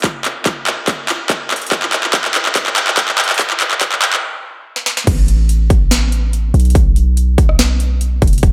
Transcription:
0.04 kick, clap, closed hi-hat
0.25 clap, closed hi-hat
0.46 kick, clap, closed hi-hat
0.67 clap, closed hi-hat
0.88 kick, clap, closed hi-hat
1.09 clap, closed hi-hat
1.30 kick, clap, closed hi-hat
1.51 clap, closed hi-hat
1.56 closed hi-hat
1.62 closed hi-hat
1.67 closed hi-hat
1.72 kick, clap, closed hi-hat
1.83 clap
1.93 clap, closed hi-hat
2.04 clap
2.13 kick, clap, closed hi-hat
2.25 clap
2.35 clap, closed hi-hat
2.46 clap
2.55 kick, clap, closed hi-hat
2.66 clap
2.76 clap, closed hi-hat
2.87 clap
2.97 kick, clap, closed hi-hat
3.08 clap
3.18 clap, closed hi-hat
3.24 closed hi-hat
3.29 clap, closed hi-hat
3.34 closed hi-hat
3.39 kick, clap, closed hi-hat
3.50 clap
3.60 clap, closed hi-hat
3.71 clap
3.81 kick, clap, closed hi-hat
3.92 clap
4.02 clap, closed hi-hat
4.13 clap
4.76 snare
4.86 snare
4.97 snare
5.07 808-style bass A1, kick, closed hi-hat, crash
5.28 closed hi-hat
5.49 closed hi-hat
5.70 kick, closed hi-hat
5.91 snare, closed hi-hat
6.12 closed hi-hat
6.33 closed hi-hat
6.54 808-style bass B1, closed hi-hat
6.60 closed hi-hat
6.65 closed hi-hat
6.70 closed hi-hat
6.75 kick, closed hi-hat
6.96 closed hi-hat
7.17 closed hi-hat
7.38 kick, closed hi-hat
7.49 cross-stick
7.59 snare, closed hi-hat
7.80 closed hi-hat
8.01 closed hi-hat
8.22 808-style bass E1, kick, closed hi-hat
8.27 closed hi-hat
8.33 closed hi-hat
8.38 closed hi-hat
8.43 kick, closed hi-hat

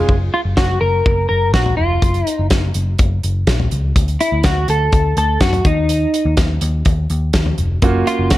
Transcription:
Already playing: grand piano C#3 G#3 C#4 F4 G#4
0.09 picked electric bass F#1, kick
0.34 clean electric guitar F4
0.45 picked electric bass F#1
0.57 picked electric bass F#1, clean electric guitar F#4, kick, snare
0.81 picked electric bass F#1, clean electric guitar A#4
1.06 picked electric bass F#1, kick
1.29 picked electric bass F#1, clean electric guitar A#4
1.54 picked electric bass A#1, clean electric guitar F#4, kick, snare
1.66 floor tom
1.77 picked electric bass F1, clean electric guitar F4
2.02 picked electric bass F#1, kick, closed hi-hat
2.14 closed hi-hat
2.27 clean electric guitar D#4, closed hi-hat
2.39 picked electric bass F#1
2.50 picked electric bass F#1, kick, snare, closed hi-hat
2.74 picked electric bass F#1, closed hi-hat
2.98 picked electric bass F#1, kick, closed hi-hat
3.23 picked electric bass F#1, closed hi-hat
3.47 picked electric bass A#1, kick, snare, closed hi-hat
3.60 floor tom
3.71 picked electric bass C#2, closed hi-hat
3.96 picked electric bass D2, kick, closed hi-hat
4.08 closed hi-hat
4.20 clean electric guitar E4, closed hi-hat
4.32 picked electric bass D2
4.44 picked electric bass D2, clean electric guitar F#4, kick, snare, closed hi-hat
4.68 picked electric bass D2, clean electric guitar A4, closed hi-hat
4.92 picked electric bass D2, kick, closed hi-hat
5.17 picked electric bass D2, clean electric guitar A4, closed hi-hat
5.40 picked electric bass F#2, clean electric guitar F#4, kick, snare, closed hi-hat
5.53 closed hi-hat, floor tom
5.65 picked electric bass D#2, clean electric guitar D#4, kick, closed hi-hat
5.89 closed hi-hat
6.14 closed hi-hat
6.25 picked electric bass D#2
6.37 picked electric bass D#2, kick, snare, closed hi-hat
6.61 picked electric bass D#2, closed hi-hat
6.85 picked electric bass D#2, kick, closed hi-hat
7.10 picked electric bass D#2, closed hi-hat
7.33 picked electric bass D#2, kick, snare, closed hi-hat
7.46 floor tom
7.58 picked electric bass F1, closed hi-hat
7.82 picked electric bass F#1, grand piano A#3 C#4 F4 F#4, kick, closed hi-hat
8.07 clean electric guitar F4, closed hi-hat
8.19 picked electric bass F#1
8.30 picked electric bass F#1, clean electric guitar F#4, kick, snare, closed hi-hat

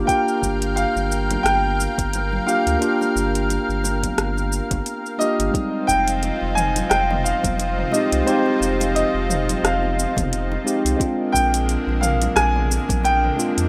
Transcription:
Already playing: tine electric piano A#3 D4 F4 G4, analog synth pad F4 A#4 F5 G5
0.06 tine electric piano A#3 D4 F4, grand piano G5, kick, closed hi-hat, high bongo, cabasa
0.10 tine electric piano G4
0.28 cabasa
0.42 sub bass G1, kick, high bongo, cabasa
0.62 closed hi-hat, cabasa
0.76 grand piano F5, closed hi-hat, cabasa
0.96 sub bass G1, high bongo, cabasa
1.12 cabasa
1.30 closed hi-hat, high bongo, high conga, low conga, cabasa
1.43 sub bass G1, grand piano G5, cross-stick, closed hi-hat, cabasa
1.65 high conga
1.80 high bongo, cabasa
1.98 sub bass G1, kick, closed hi-hat, high conga, cabasa
2.13 closed hi-hat, high bongo, cabasa
2.32 low conga
2.46 tine electric piano A#3 D4 F4 G4, grand piano F5, cabasa
2.66 sub bass D2, closed hi-hat, high bongo, cabasa
2.79 tine electric piano A#3 D4 F4, closed hi-hat, cabasa
2.84 tine electric piano G4
3.01 high bongo, cabasa
3.16 sub bass G1, cabasa
3.35 closed hi-hat, cabasa
3.50 closed hi-hat, high bongo, cabasa
3.69 sub bass G1, cabasa
3.84 high bongo, cabasa
4.03 kick, closed hi-hat, high conga, low conga, cabasa
4.18 sub bass G1, cross-stick, closed hi-hat, cabasa
4.37 high bongo, high conga, cabasa
4.52 cabasa
4.71 sub bass G1, kick, closed hi-hat, high bongo, high conga, cabasa
4.86 closed hi-hat, cabasa
5.06 cabasa
5.18 tine electric piano A#3 D4 F4 G4, grand piano D#5, high bongo, cabasa
5.39 sub bass G1, closed hi-hat, cabasa
5.51 analog synth pad F3 C4 D#4 F4, tine electric piano G#3 C4 D#4, kick
5.55 tine electric piano G3, closed hi-hat, cabasa
5.87 sub bass F1, grand piano G5, kick, high bongo, cabasa
6.08 closed hi-hat, cabasa
6.22 closed hi-hat, high bongo, cabasa
6.42 sub bass F1
6.55 grand piano G#5, mid tom, cabasa
6.76 closed hi-hat, high bongo, low conga, cabasa
6.90 sub bass F1, grand piano G5, cross-stick, closed hi-hat, cabasa
7.10 mid tom, high bongo, high conga
7.24 grand piano F5, cabasa
7.43 sub bass F1, kick, closed hi-hat, high conga, low conga, cabasa
7.58 closed hi-hat, high bongo, cabasa
7.79 mid tom
7.91 tine electric piano G#3 C4 D#4 G4, grand piano D#5, high bongo, cabasa
8.12 sub bass C2, closed hi-hat, cabasa
8.25 tine electric piano G#3 C4 D#4, grand piano C5, closed hi-hat, cabasa
8.29 tine electric piano G4
8.46 high bongo
8.61 sub bass F1, cabasa
8.80 closed hi-hat, high bongo, cabasa
8.95 grand piano D#5, closed hi-hat, cabasa
9.14 sub bass F1
9.30 mid tom, high bongo, cabasa
9.49 closed hi-hat, low conga, cabasa
9.63 sub bass F1, grand piano F5, cross-stick, closed hi-hat, high bongo, cabasa
9.83 high conga
9.99 cabasa
10.16 sub bass F1, kick, closed hi-hat, mid tom, high bongo, high conga, cabasa
10.33 closed hi-hat, cabasa
10.52 high bongo
10.64 tine electric piano G#3 C4 D#4 G4, cabasa
10.85 sub bass C2, closed hi-hat, cabasa
10.96 tine electric piano G#3 C4 D4, kick
11.01 analog synth pad D3 G#3 A#3, tine electric piano F4, closed hi-hat, high bongo, cabasa
11.32 sub bass A#1, grand piano G5, kick, high bongo, cabasa
11.54 closed hi-hat, cabasa
11.69 closed hi-hat, cabasa
11.87 sub bass A#1, high bongo
12.01 grand piano F5, mid tom, cabasa
12.22 closed hi-hat, high bongo, low conga, cabasa
12.36 sub bass A#1, grand piano G#5, cross-stick, closed hi-hat, cabasa
12.56 mid tom, high conga
12.71 high bongo, cabasa
12.89 sub bass A#1, kick, closed hi-hat, high conga, low conga, cabasa
13.04 grand piano G5, closed hi-hat, high bongo, cabasa
13.24 mid tom
13.36 tine electric piano G#3 C4 D4 F4, cabasa
13.57 sub bass F2, closed hi-hat, high bongo, cabasa

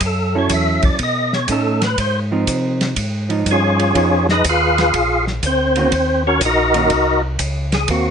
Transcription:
0.01 tonewheel organ F#2, kick, ride
0.06 tonewheel organ A4
0.35 hollow-body jazz guitar F#3 C#4 E4 A4, tonewheel organ C#5
0.49 tonewheel organ E2, kick, hi-hat pedal, ride
0.53 tonewheel organ E5
0.82 tonewheel organ E2 D5, kick, ride
0.99 tonewheel organ B2, kick, ride
1.03 tonewheel organ D#5
1.33 tonewheel organ C#5, snare
1.48 tonewheel organ A2 A4, hollow-body jazz guitar A3 C#4 D#4, kick, hi-hat pedal, ride
1.82 tonewheel organ B4, snare, ride
1.98 tonewheel organ G#2 C5, kick, ride
2.32 hollow-body jazz guitar F3 C4 D#4
2.47 tonewheel organ C3, kick, hi-hat pedal, ride
2.81 snare, ride
2.96 tonewheel organ G#2, kick, ride
3.29 hollow-body jazz guitar F3 D#4, ride
3.46 tonewheel organ G2, kick, hi-hat pedal, ride
3.51 tonewheel organ C#4 F4 G#4 C#5
3.79 ride
3.95 tonewheel organ F2, hollow-body jazz guitar F3 B3 D#4 G#4, kick, ride
4.29 tonewheel organ D#4 G#4 B4 D#5, snare
4.44 tonewheel organ D#2, kick, hi-hat pedal, ride
4.49 tonewheel organ F4 G#4 B4 F5
4.78 snare, ride
4.94 tonewheel organ A#1, kick, ride
5.27 snare
5.43 tonewheel organ D2 C5, kick, hi-hat pedal, ride
5.47 tonewheel organ C4
5.76 hollow-body jazz guitar D#3 A#3 C#4 F#4, ride
5.92 tonewheel organ D#2, kick, ride
6.27 tonewheel organ C#4 F#4 A#4 C#5
6.41 tonewheel organ A#1, kick, hi-hat pedal, ride
6.45 tonewheel organ D#4 F#4 A#4 D#5
6.74 hollow-body jazz guitar D#3 A#3 C#4 F#4, ride
6.90 tonewheel organ C2, kick, ride
7.39 tonewheel organ C#2, kick, hi-hat pedal, ride
7.72 tonewheel organ G#4, snare, ride
7.88 tonewheel organ D#2 F#4, hollow-body jazz guitar A#3 C4, kick, ride

